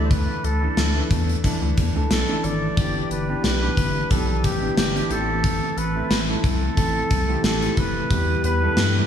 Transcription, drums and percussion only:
0.11 kick, closed hi-hat
0.44 closed hi-hat
0.77 snare, closed hi-hat
1.11 kick, closed hi-hat
1.29 closed hi-hat
1.44 kick, closed hi-hat
1.77 kick, closed hi-hat
2.11 snare, closed hi-hat
2.44 closed hi-hat
2.77 kick, closed hi-hat
3.11 closed hi-hat
3.44 snare, closed hi-hat
3.77 kick, closed hi-hat
4.11 kick, closed hi-hat
4.44 kick, closed hi-hat
4.77 snare, closed hi-hat
4.96 closed hi-hat
5.11 closed hi-hat
5.44 kick, closed hi-hat
5.78 closed hi-hat
6.11 snare, closed hi-hat
6.44 kick, closed hi-hat
6.77 kick, closed hi-hat
7.11 kick, closed hi-hat
7.44 snare, closed hi-hat
7.62 closed hi-hat
7.77 kick, closed hi-hat
8.11 kick, closed hi-hat
8.44 closed hi-hat
8.77 snare, closed hi-hat

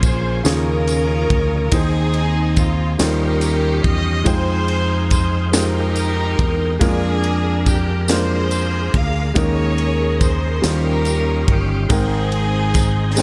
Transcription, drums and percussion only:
0.03 kick, ride, tambourine
0.45 snare, ride, tambourine
0.88 ride, tambourine
1.30 kick, ride
1.72 kick, ride, tambourine
2.14 ride
2.56 kick, ride, tambourine
2.99 snare, ride, tambourine
3.41 ride, tambourine
3.84 kick, ride
4.26 kick, ride, tambourine
4.68 ride
5.10 kick, ride, tambourine
5.53 snare, ride, tambourine
5.96 ride, tambourine
6.39 kick, ride
6.81 kick, ride, tambourine
7.24 ride
7.66 kick, ride, tambourine
8.08 snare, ride, tambourine
8.51 ride, tambourine
8.94 kick, ride
9.35 kick, ride, tambourine
9.78 ride
10.21 kick, ride, tambourine
10.64 snare, ride, tambourine
11.05 ride, tambourine
11.48 kick, ride
11.90 kick, ride, tambourine
12.32 ride
12.74 kick, snare, ride, tambourine
13.17 snare, tambourine

